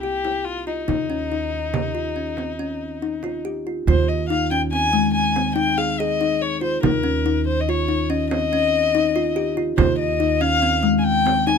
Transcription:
Already playing: upright bass C2
0.02 violin G4, kalimba G4, frame drum
0.25 kalimba E4, frame drum
0.45 violin F4
0.67 violin D#4, kalimba F4
0.88 upright bass D#2, kalimba D#4, frame drum
1.10 kalimba C#4
1.31 kalimba D#4, frame drum
1.53 frame drum
1.74 kalimba G4, frame drum
1.95 kalimba F4
2.16 kalimba C#4
2.37 kalimba C4, frame drum
2.59 kalimba C#4
3.02 kalimba D#4
3.23 kalimba F4, frame drum
3.45 kalimba G4
3.67 kalimba F4
3.87 upright bass D#2, kalimba F4, violin C5, frame drum
4.08 violin D#5
4.29 kalimba D#4, violin F5
4.51 kalimba C#4, violin G5, frame drum
4.72 kalimba C4, violin G#5, frame drum
4.93 kalimba G#3
5.14 violin G#5
5.36 kalimba C4, frame drum
5.56 kalimba D#4, violin G5
5.78 kalimba G#4, violin F5
6.00 kalimba G#4, violin D#5
6.21 kalimba D#4
6.42 violin C#5
6.61 kalimba F4, violin C5, frame drum
6.83 upright bass D#2, kalimba D#4, violin A#4, frame drum
7.03 kalimba C#4
7.26 kalimba D#4
7.47 violin C5, frame drum
7.61 violin D#5
7.67 kalimba F4, violin C#5, frame drum
7.88 kalimba D#4
8.10 kalimba C#4, violin D#5
8.30 kalimba C4, violin D#5, frame drum
8.53 kalimba C#4
8.95 kalimba D#4
9.16 kalimba F4
9.36 kalimba G4
9.57 kalimba F4, frame drum
9.77 upright bass D#2, kalimba F4, violin C5, frame drum
9.99 violin D#5
10.20 kalimba D#4
10.41 kalimba C#4, violin F5, frame drum
10.62 kalimba C4, frame drum
10.83 kalimba G#3
10.98 violin G#5
11.04 violin G5
11.26 kalimba C4, frame drum
11.47 kalimba D#4, violin G#5

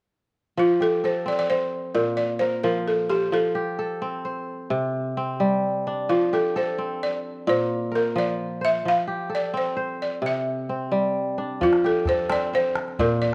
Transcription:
0.57 kora F3, balafon F4
0.80 kora G4, balafon A4
1.04 kora A4, balafon C5
1.26 kora C4, balafon D5
1.32 balafon D5
1.39 balafon D5
1.50 balafon C5, kora C5
1.95 kora A#2, balafon A#4
2.17 balafon D5
2.39 kora A#4, balafon C5
2.63 kora F3, balafon A#4
2.88 balafon A4
3.10 balafon G4, kora C5
3.32 kora F3, balafon A4
3.55 kora G4
3.79 kora A4
4.02 kora C4
4.25 kora C5
4.70 kora C3
5.17 kora C4
5.40 kora G3
5.87 kora D4
6.09 kora F3, balafon F4
6.33 kora G4, balafon A4
6.56 kora A4, balafon C5
6.78 kora C4
7.03 balafon D5
7.47 kora A#2, balafon C5
7.91 kora A#4
7.95 balafon A#4
8.16 kora F3, balafon D5
8.61 kora C5, balafon E5
8.85 kora F3, balafon F5
9.07 kora G4
9.29 kora A4
9.35 balafon D5
9.54 kora C4, balafon C5
9.77 kora C5
10.02 balafon D5
10.22 kora C3
10.26 balafon E5
10.69 kora C4
10.92 kora G3
11.38 kora D4
11.61 kora F3, balafon F4, calabash thump
11.73 calabash click
11.84 kora G4, balafon A4
12.05 kora A4, balafon C5, calabash thump, calabash click
12.30 kora C4, balafon D5, calabash click
12.53 kora C5, balafon C5
12.76 calabash click
12.88 calabash click
12.99 kora A#2, balafon A#4, calabash thump
13.22 balafon D5

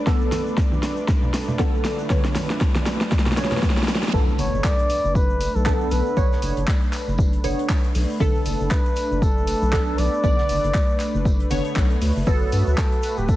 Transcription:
Already playing: analog synth pad A3 D4 B4 D5
0.07 synth stab D3 B3 A4, kick, snare, shaker
0.21 shaker
0.32 snare, open hi-hat, high conga, shaker
0.47 shaker
0.57 kick, snare, shaker
0.72 high conga, shaker
0.83 snare, open hi-hat, shaker
0.97 shaker
1.08 kick, snare, shaker
1.23 low conga, shaker
1.34 snare, open hi-hat, shaker
1.48 low conga, shaker
1.59 synth stab D3 B3 A4, kick, snare, shaker
1.74 shaker
1.85 snare, open hi-hat, shaker
1.99 shaker
2.10 synth stab D3 B3 C#5, kick, snare, shaker
2.24 snare, shaker
2.35 snare, open hi-hat, high conga, shaker
2.50 snare, shaker
2.61 kick, snare, shaker
2.75 snare, high conga, shaker
2.86 snare, open hi-hat, shaker
3.01 snare, shaker
3.12 kick, snare, reverse cymbal, shaker
3.19 snare
3.26 snare, low conga, shaker
3.32 snare
3.37 synth stab D3 B3 C#5, snare, open hi-hat, shaker
3.45 snare
3.51 snare, low conga, shaker
3.57 snare
3.63 kick, snare, shaker
3.70 snare
3.77 snare, shaker
3.83 snare
3.88 snare, open hi-hat, shaker
3.95 snare
4.03 snare, shaker
4.08 snare
4.13 analog synth bass B1, synth stab D3 B3 A4, analog synth pad A3 D4 B4, kick, tambourine, impact, shaker
4.28 shaker
4.38 analog synth bass F#1, muted trumpet C#5, open hi-hat, tambourine, shaker
4.53 analog synth bass F#1, shaker
4.64 muted trumpet D5, kick, snare, clap, tambourine, shaker
4.79 closed hi-hat, shaker
4.90 open hi-hat, tambourine, shaker
5.04 analog synth bass F#1, shaker
5.15 muted trumpet B4, kick, tambourine, shaker
5.30 shaker
5.41 open hi-hat, tambourine, shaker
5.55 analog synth bass B1, muted trumpet A4, shaker
5.66 synth stab D3 B3 A4, muted trumpet A4, kick, snare, clap, tambourine, shaker
5.81 shaker
5.91 analog synth bass B1, muted trumpet B4, open hi-hat, tambourine, shaker
6.06 shaker
6.17 analog synth bass B1, synth stab D3 B3 C#5, kick, tambourine, shaker
6.32 snare, shaker
6.42 analog synth bass F#1, open hi-hat, tambourine, shaker
6.56 analog synth bass F#1, closed hi-hat, shaker
6.67 kick, snare, clap, tambourine, shaker
6.83 shaker
6.93 clap, open hi-hat, tambourine, shaker
7.08 analog synth bass F#1, shaker
7.18 kick, tambourine, shaker
7.33 closed hi-hat, shaker
7.44 analog synth bass F#1, synth stab D3 B3 C#5, open hi-hat, tambourine, shaker
7.59 closed hi-hat, shaker
7.69 kick, snare, clap, tambourine, shaker
7.84 closed hi-hat, shaker
7.95 analog synth bass B1, open hi-hat, shaker
8.10 shaker
8.20 analog synth bass B1, synth stab D3 B3 A4, muted trumpet A4, kick, tambourine, shaker
8.35 shaker
8.46 analog synth bass F#1, open hi-hat, tambourine, shaker
8.60 analog synth bass F#1, shaker
8.71 muted trumpet B4, kick, snare, clap, tambourine, shaker
8.86 closed hi-hat, shaker
8.96 open hi-hat, tambourine, shaker
9.11 analog synth bass F#1, shaker
9.22 muted trumpet A4, kick, tambourine, shaker
9.37 shaker
9.47 open hi-hat, tambourine, shaker
9.62 analog synth bass B1, shaker
9.73 synth stab D3 B3 A4, kick, snare, clap, tambourine, shaker
9.87 shaker
9.98 analog synth bass B1, muted trumpet D5, open hi-hat, tambourine, shaker
10.13 shaker
10.23 analog synth bass B1, synth stab D3 B3 D5, kick, tambourine, shaker
10.38 snare, shaker
10.49 analog synth bass F#1, open hi-hat, tambourine, shaker
10.64 analog synth bass F#1, closed hi-hat, shaker
10.74 kick, snare, clap, tambourine, shaker
10.89 shaker
11.00 clap, open hi-hat, tambourine, shaker
11.14 analog synth bass F#1, shaker
11.25 kick, tambourine, shaker
11.40 closed hi-hat, shaker
11.50 analog synth bass F#1, synth stab D3 B3 C#5, open hi-hat, tambourine, shaker
11.64 closed hi-hat, shaker
11.76 analog synth bass B1, kick, snare, clap, tambourine, shaker
11.90 closed hi-hat, shaker
12.01 analog synth bass D2, open hi-hat, shaker
12.16 analog synth bass F#1, shaker
12.27 analog synth bass G1, synth stab F#3 B3 A4, analog synth pad F#4, kick, tambourine, shaker
12.41 shaker
12.52 analog synth bass G2, open hi-hat, tambourine, shaker
12.67 analog synth bass D2, shaker
12.77 muted trumpet A4, kick, snare, clap, tambourine, shaker
12.92 closed hi-hat, shaker
13.03 open hi-hat, tambourine, shaker
13.17 analog synth bass D1, muted trumpet G4, shaker
13.28 muted trumpet A4, kick, tambourine, shaker

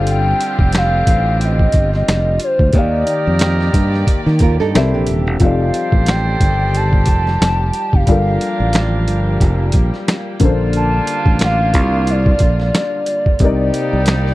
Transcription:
Already playing: fingered electric bass G1, horn section D3 C4 G4, string section D3 G3 C4 F4, upright piano G3 G4 A4 C5 F5
0.07 soft synth lead G5, closed hi-hat
0.41 closed hi-hat
0.59 fingered electric bass F1, kick
0.73 finger snap, snare, closed hi-hat
0.77 soft synth lead F5
1.07 fingered electric bass A1, kick, closed hi-hat
1.41 soft synth lead D#5, closed hi-hat
1.59 kick
1.72 fingered electric bass G1, kick, closed hi-hat
1.93 soft synth lead D#5, snare
2.08 fingered electric bass F1, finger snap, snare, closed hi-hat
2.40 soft synth lead C5, closed hi-hat
2.59 fingered electric bass D2, kick
2.73 fingered electric bass D#2, upright piano D#3 D#4 G4, string section D#3 A#3 G4 D5, horn section D#4 G4 A#4, kick, closed hi-hat
2.77 upright piano D5 F5, soft synth lead D5
3.07 closed hi-hat
3.27 fingered electric bass F2
3.39 finger snap, snare, closed hi-hat
3.61 snare
3.74 fingered electric bass G2, kick, closed hi-hat
3.94 snare
4.07 kick, closed hi-hat
4.26 fingered electric bass D#3, snare
4.39 fingered electric bass D#2, nylon-string guitar F4 A#4, kick, closed hi-hat
4.60 fingered electric bass G2, nylon-string guitar D#4 A4, snare
4.74 fingered electric bass C2, upright piano C3 C4 A#4 D5 E5, string section E3 C4 G4, horn section E4 G4 C5, finger snap, snare, closed hi-hat
4.93 fingered electric bass A#1, nylon-string guitar D4 G4
5.07 fingered electric bass D#1, closed hi-hat
5.27 fingered electric bass E1
5.40 fingered electric bass F1, string section D#3 G3 D5, upright piano F3 C4 D#4 G4 A4, horn section G4 A4 C5, soft synth lead F5, kick, closed hi-hat
5.44 upright piano D5
5.74 closed hi-hat
5.92 fingered electric bass A1, kick
6.06 soft synth lead G5, finger snap, snare, closed hi-hat
6.40 fingered electric bass G1, kick, closed hi-hat
6.75 soft synth lead A5, closed hi-hat
6.93 kick
7.06 fingered electric bass F1, kick, closed hi-hat
7.27 snare
7.41 fingered electric bass F1, finger snap, snare, closed hi-hat
7.73 closed hi-hat
7.93 fingered electric bass F#1, soft synth lead F5, kick
8.06 fingered electric bass G1, string section F3 A#3, upright piano G3 D4 F4 A4, horn section D4 F4 A#4, kick, closed hi-hat
8.11 upright piano A#4
8.41 closed hi-hat
8.60 fingered electric bass A1
8.73 finger snap, snare, closed hi-hat
9.08 fingered electric bass G1, closed hi-hat
9.41 fingered electric bass F1, kick, closed hi-hat
9.72 fingered electric bass A#1, kick, closed hi-hat
9.94 snare
10.08 finger snap, snare, closed hi-hat
10.40 fingered electric bass A#1, upright piano D3 A#3 C#4 A4, string section D3 F4, horn section A#3 D4 F4, kick, closed hi-hat
10.45 upright piano C5
10.49 upright piano D4
10.73 soft synth lead A5, closed hi-hat
11.07 closed hi-hat
11.26 fingered electric bass A1, kick
11.39 soft synth lead F5, finger snap, snare, closed hi-hat
11.74 fingered electric bass C2, kick, closed hi-hat
12.07 soft synth lead D5, closed hi-hat
12.26 kick
12.39 fingered electric bass A#1, kick, closed hi-hat
12.60 snare
12.75 finger snap, snare, closed hi-hat
13.06 closed hi-hat
13.26 kick
13.39 fingered electric bass C2, upright piano C3 C4 D#4, string section C3 A#3 D#4 D5, horn section G3 D#4 G4, kick, closed hi-hat
13.44 upright piano A#4 D5
13.74 closed hi-hat
13.93 fingered electric bass C2
14.06 finger snap, snare, closed hi-hat
14.27 snare

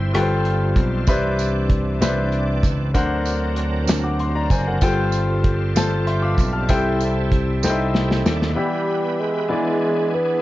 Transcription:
Already playing: slap bass G1, grand piano G2 E4 G4 C5 G5, tonewheel organ G3 C4 E4 C5
0.12 slap bass G1, grand piano G2 F4 A4 B4 G5, tonewheel organ G3 B3 F4 A4, cross-stick, closed hi-hat
0.19 tonewheel organ C4, grand piano C5
0.45 closed hi-hat
0.76 slap bass B1, kick, closed hi-hat
1.07 slap bass C2, grand piano C3 D4 B4 C5 E5, tonewheel organ E3 C4 D4 D5, kick, closed hi-hat, tambourine
1.39 closed hi-hat, tambourine
1.70 kick, closed hi-hat
2.01 slap bass C2, grand piano D4 B4 C5 E5, snare, closed hi-hat, tambourine
2.32 closed hi-hat
2.63 slap bass C#2, kick, closed hi-hat, tambourine
2.94 slap bass D2, grand piano D3 D4 A#4 C5 F#5, tonewheel organ F#3 C4 D4 A#4, kick, closed hi-hat, tambourine
3.25 closed hi-hat, tambourine
3.56 closed hi-hat
3.87 slap bass D2, snare, closed hi-hat, tambourine
4.04 grand piano F#5 D6
4.19 grand piano C6, closed hi-hat
4.35 grand piano D5 A#5
4.50 slap bass F#1, grand piano C5 G#5, kick, closed hi-hat, tambourine
4.67 grand piano A#4 F#5
4.81 slap bass G1, grand piano G2 F4 A4 C5 G5, tonewheel organ G3 C4 F4 G4, kick, closed hi-hat, tambourine
4.88 tonewheel organ A4
5.12 closed hi-hat, tambourine
5.44 kick, closed hi-hat
5.76 slap bass G1, grand piano F4 A4 C5 A5, snare, closed hi-hat, tambourine
6.07 tonewheel organ D5 G5, grand piano E5 C6, closed hi-hat
6.22 tonewheel organ B4 E5, grand piano F5 D6
6.38 slap bass B1, kick, closed hi-hat, tambourine
6.53 tonewheel organ A4 D5, grand piano A5 F6
6.67 slap bass C2, grand piano C3 E4 A4 C5 G5, tonewheel organ G3 C4 E4 A4, kick, closed hi-hat, tambourine
7.00 closed hi-hat, tambourine
7.32 kick, closed hi-hat
7.63 slap bass C2, grand piano D#4 A4 C5 G5, snare, tambourine
7.70 grand piano E4
7.94 tonewheel organ G5, snare
8.11 snare
8.24 slap bass D#2, tonewheel organ D5, snare, tambourine
8.42 snare
8.53 grand piano E3 B3 E4 G4 E5, bassoon G3, tonewheel organ B3 E4 G4 B4
9.21 bassoon G#3
9.48 tonewheel organ E3 B3 D4 G#4, grand piano E3 B3 E4 G#4 D5
10.14 bassoon B3

